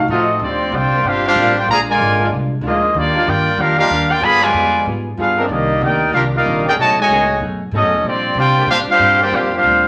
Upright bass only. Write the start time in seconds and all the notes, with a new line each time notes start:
0.08 A2
0.40 D2
0.72 C2
1.03 G1
1.35 A1
1.66 A#1
1.99 G#1
2.30 C2
2.61 D2
2.94 D#2
3.27 G2
3.57 F2
3.90 D#2
4.21 G2
4.53 F2
4.86 G#2
5.17 G2
5.49 C2
5.81 D2
6.13 C2
6.45 A#1
6.76 B1
6.96 muted upright bass stroke
7.09 C#2
7.40 F#2
7.71 G#2
7.82 F#2
7.93 D#2
8.04 A#2
8.34 C3
8.66 A#2
8.87 muted upright bass stroke
8.99 G2
9.31 F2
9.63 D2